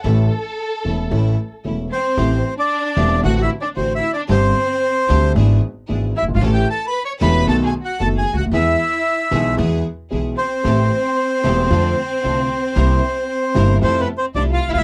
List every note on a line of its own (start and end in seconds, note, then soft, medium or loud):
0.02 0.27 A1 medium
0.02 0.28 A2 medium
0.02 0.28 E3 medium
0.02 0.27 A3 medium
0.02 0.28 A3 medium
0.02 0.27 C#4 medium
0.02 0.27 E4 medium
0.02 1.59 A4 medium
0.02 0.28 A4 medium
0.06 0.28 A1 medium
0.06 0.28 C#4 medium
0.84 1.07 E1 medium
0.84 1.07 E2 medium
0.84 1.07 E3 soft
0.84 1.07 A3 soft
0.84 1.07 C#4 soft
0.84 1.07 E4 medium
0.84 1.08 A4 medium
1.11 1.33 A1 medium
1.11 1.34 A1 medium
1.11 1.33 A2 medium
1.11 1.34 E3 medium
1.11 1.33 A3 medium
1.11 1.34 A3 medium
1.11 1.33 C#4 medium
1.11 1.34 C#4 medium
1.11 1.33 E4 medium
1.11 1.34 A4 medium
1.65 1.87 E1 medium
1.65 1.87 E2 soft
1.65 1.87 E3 soft
1.65 1.87 A3 soft
1.65 1.87 C#4 soft
1.65 1.87 E4 soft
1.65 1.87 A4 soft
1.91 2.54 C4 medium
1.91 2.54 C5 medium
2.17 2.40 A1 loud
2.17 2.40 A1 medium
2.17 2.40 A2 medium
2.17 2.40 E3 medium
2.17 2.40 A3 medium
2.17 2.40 C4 medium
2.17 2.40 G4 medium
2.58 3.20 D4 medium
2.58 3.21 D5 medium
2.96 3.19 E1 medium
2.96 3.20 E1 medium
2.96 3.19 E2 medium
2.96 3.19 E3 medium
2.96 3.19 A3 medium
2.96 3.20 A3 medium
2.96 3.19 C4 medium
2.96 3.20 C4 medium
2.96 3.20 G4 medium
3.23 3.46 A1 medium
3.23 3.46 A2 medium
3.23 3.46 D3 medium
3.23 3.46 A3 medium
3.23 3.46 C4 medium
3.23 3.46 D4 medium
3.23 3.46 F#4 medium
3.23 3.36 F#4 medium
3.23 3.34 F#5 loud
3.36 3.41 F#4 medium
3.36 3.41 F#5 medium
3.42 3.50 E4 medium
3.42 3.50 E5 loud
3.61 3.69 D4 medium
3.61 3.69 D5 medium
3.76 3.99 A1 medium
3.76 3.99 A2 medium
3.76 3.99 D3 soft
3.76 3.99 A3 soft
3.76 3.99 C4 medium
3.76 3.99 C4 soft
3.76 3.95 C4 medium
3.76 3.99 D4 soft
3.76 3.99 F#4 medium
3.76 3.93 C5 medium
3.95 4.13 E4 medium
3.95 4.11 E5 medium
4.13 4.22 D4 medium
4.13 4.21 D5 medium
4.29 4.52 G1 loud
4.29 4.52 G1 medium
4.29 4.52 G2 medium
4.29 4.52 D3 medium
4.29 4.52 G3 medium
4.29 4.52 C4 medium
4.29 4.52 D4 medium
4.29 4.52 G4 medium
4.29 5.32 C5 loud
4.33 5.33 C4 medium
5.09 5.32 D2 medium
5.09 5.32 D2 loud
5.09 5.31 D3 medium
5.09 5.32 G3 medium
5.09 5.32 C4 medium
5.09 5.32 D4 medium
5.09 5.32 G4 medium
5.35 5.58 G#1 medium
5.35 5.58 G#1 loud
5.35 5.58 G#2 medium
5.35 5.58 E3 medium
5.35 5.58 B3 medium
5.35 5.58 D4 medium
5.35 5.58 E4 medium
5.35 5.58 G#4 medium
5.89 6.11 G#1 medium
5.89 6.11 G#2 medium
5.89 6.11 E3 soft
5.89 6.11 B3 soft
5.89 6.11 D4 soft
5.89 6.11 D4 medium
5.89 6.11 E4 soft
5.89 6.11 G#4 medium
6.16 6.24 E4 medium
6.16 6.25 E5 medium
6.22 6.29 F#1 medium
6.22 6.28 F#1 medium
6.28 6.35 G1 medium
6.28 6.34 G1 medium
6.34 6.41 G#1 medium
6.34 6.42 F4 medium
6.34 6.43 F5 medium
6.41 6.64 A1 loud
6.41 6.64 A1 medium
6.41 6.64 A2 medium
6.41 6.64 E3 medium
6.41 6.64 A3 medium
6.41 6.64 C#4 medium
6.41 6.64 G4 medium
6.41 6.64 A4 medium
6.52 6.68 G4 medium
6.52 6.68 G5 loud
6.70 6.85 A4 medium
6.70 6.86 A5 loud
6.87 7.03 B4 medium
6.87 7.03 B5 medium
7.05 7.13 C#5 medium
7.05 7.13 C#6 medium
7.20 7.43 E1 loud
7.20 7.44 E1 medium
7.20 7.44 E2 loud
7.20 7.43 E3 medium
7.20 7.44 A3 medium
7.20 7.43 C#4 medium
7.20 7.44 C#4 medium
7.20 7.43 G4 medium
7.20 7.44 G4 medium
7.20 7.43 A4 medium
7.20 7.46 B4 loud
7.20 7.46 B5 loud
7.47 7.70 B1 medium
7.47 7.70 B2 medium
7.47 7.70 D#3 medium
7.47 7.70 A3 medium
7.47 7.69 B3 medium
7.47 7.70 B3 medium
7.47 7.69 D#4 medium
7.47 7.70 F#4 medium
7.47 7.70 A4 medium
7.47 7.55 A4 medium
7.47 7.56 A5 loud
7.64 7.72 G#4 medium
7.64 7.74 G#5 medium
7.82 7.99 F#4 medium
7.82 8.02 F#5 medium
7.99 8.22 F#1 medium
7.99 8.22 F#2 medium
7.99 8.22 D#3 soft
7.99 8.22 A3 soft
7.99 8.22 B3 medium
7.99 8.23 B3 soft
7.99 8.22 D#4 soft
7.99 8.22 F#4 medium
7.99 8.07 A4 medium
7.99 8.23 A4 medium
7.99 8.08 A5 medium
8.17 8.34 G#4 medium
8.17 8.36 G#5 medium
8.33 8.39 C#2 medium
8.33 8.40 C#2 medium
8.33 8.42 F#4 medium
8.37 8.46 D2 medium
8.37 8.45 D2 medium
8.37 8.45 F#5 medium
8.46 8.51 D#2 medium
8.46 8.53 D#2 medium
8.51 8.74 E2 medium
8.51 8.75 E2 medium
8.51 8.76 E3 medium
8.51 8.75 G#3 medium
8.51 8.75 B3 medium
8.51 8.76 B3 medium
8.51 9.55 E4 medium
8.51 8.75 E4 medium
8.51 8.75 G#4 medium
8.51 8.76 G#4 medium
8.51 9.55 E5 medium
9.31 9.54 B1 loud
9.31 9.54 B1 medium
9.31 9.54 B2 medium
9.31 9.54 E3 medium
9.31 9.54 G#3 medium
9.31 9.54 B3 medium
9.31 9.55 E4 medium
9.31 9.55 G#4 medium
9.57 9.81 E2 medium
9.57 9.81 E2 loud
9.57 9.81 E3 medium
9.57 9.80 G#3 medium
9.57 9.81 B3 medium
9.57 9.81 E4 medium
9.57 9.81 G#4 medium
10.10 10.34 B1 medium
10.10 10.34 B2 soft
10.10 10.34 E3 soft
10.10 10.34 G#3 soft
10.10 10.34 B3 soft
10.10 10.34 B3 medium
10.10 10.34 E4 soft
10.10 10.34 G#4 medium
10.37 13.78 C4 medium
10.37 13.78 C5 medium
10.64 10.87 A1 medium
10.64 10.87 A1 loud
10.64 10.87 A2 medium
10.64 10.87 E3 medium
10.64 10.87 A3 medium
10.64 10.87 C4 medium
10.64 10.87 G4 medium
10.64 10.88 A4 medium
11.44 11.67 E1 loud
11.44 11.67 E1 medium
11.44 11.67 E2 medium
11.44 11.67 E3 medium
11.44 11.67 A3 medium
11.44 11.67 C4 medium
11.44 11.67 G4 medium
11.44 11.67 A4 medium
11.70 11.93 F2 loud
11.70 11.93 F2 medium
11.70 11.93 D3 medium
11.70 11.93 F3 medium
11.70 11.93 A3 medium
11.70 11.93 C4 medium
11.70 11.93 D4 medium
11.70 11.93 F4 medium
11.70 11.94 A4 medium
12.23 12.46 C2 medium
12.23 12.46 C3 medium
12.23 12.46 D3 soft
12.23 12.46 A3 soft
12.23 12.46 C4 soft
12.23 12.46 D4 medium
12.23 12.46 F4 soft
12.23 12.46 F4 medium
12.23 12.46 A4 medium
12.75 12.99 C2 medium
12.75 12.99 C2 loud
12.75 12.99 C3 medium
12.75 12.99 G3 medium
12.75 12.99 A#3 medium
12.75 12.99 C4 medium
12.75 12.99 E4 medium
12.75 12.99 A#4 medium
13.55 13.77 G1 loud
13.55 13.78 G1 loud
13.55 13.78 G2 medium
13.55 13.77 C3 medium
13.55 13.78 G3 medium
13.55 13.78 A#3 medium
13.55 13.78 C4 medium
13.55 13.78 E4 medium
13.55 13.78 A#4 medium
13.81 14.04 F2 medium
13.81 14.05 F2 loud
13.81 14.04 C3 medium
13.81 14.04 F3 medium
13.81 14.04 A3 medium
13.81 13.99 C4 medium
13.81 14.05 E4 medium
13.81 14.05 F4 medium
13.81 14.05 A4 medium
13.81 14.01 C5 loud
13.99 14.07 B3 medium
13.99 14.08 B4 medium
14.18 14.26 C4 medium
14.18 14.26 C5 medium
14.35 14.57 C2 medium
14.35 14.57 C3 medium
14.35 14.57 F3 soft
14.35 14.57 A3 soft
14.35 14.44 D4 medium
14.35 14.57 E4 medium
14.35 14.58 E4 medium
14.35 14.57 F4 soft
14.35 14.57 A4 medium
14.35 14.43 D5 medium
14.51 14.68 F4 medium
14.51 14.70 F5 medium
14.68 14.74 D2 medium
14.68 14.75 D2 medium
14.68 14.71 E4 loud
14.68 14.71 E5 loud
14.74 14.80 D#2 medium
14.74 14.81 D#2 medium
14.74 14.78 F4 medium
14.74 14.78 F5 loud
14.78 14.84 E4 medium
14.78 14.84 E5 loud